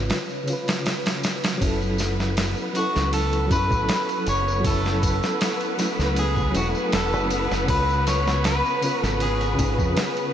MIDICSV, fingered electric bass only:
0, 0, Header, 1, 2, 480
1, 0, Start_track
1, 0, Key_signature, 3, "minor"
1, 0, Tempo, 759494
1, 1018, Time_signature, 4, 2, 24, 8
1, 6530, End_track
2, 0, Start_track
2, 0, Title_t, "Fingered electric bass"
2, 0, Program_c, 0, 33
2, 1022, Note_on_c, 0, 30, 92
2, 1603, Note_off_c, 0, 30, 0
2, 1872, Note_on_c, 0, 37, 78
2, 2200, Note_off_c, 0, 37, 0
2, 2219, Note_on_c, 0, 42, 97
2, 2331, Note_off_c, 0, 42, 0
2, 2346, Note_on_c, 0, 33, 85
2, 2445, Note_off_c, 0, 33, 0
2, 2701, Note_on_c, 0, 30, 95
2, 3282, Note_off_c, 0, 30, 0
2, 3786, Note_on_c, 0, 37, 83
2, 4117, Note_off_c, 0, 37, 0
2, 4139, Note_on_c, 0, 28, 97
2, 4251, Note_off_c, 0, 28, 0
2, 4380, Note_on_c, 0, 28, 74
2, 4508, Note_off_c, 0, 28, 0
2, 4508, Note_on_c, 0, 30, 90
2, 4716, Note_off_c, 0, 30, 0
2, 4747, Note_on_c, 0, 30, 79
2, 4845, Note_off_c, 0, 30, 0
2, 4859, Note_on_c, 0, 37, 95
2, 5441, Note_off_c, 0, 37, 0
2, 5709, Note_on_c, 0, 32, 84
2, 6039, Note_off_c, 0, 32, 0
2, 6061, Note_on_c, 0, 32, 98
2, 6172, Note_off_c, 0, 32, 0
2, 6188, Note_on_c, 0, 41, 89
2, 6286, Note_off_c, 0, 41, 0
2, 6530, End_track
0, 0, End_of_file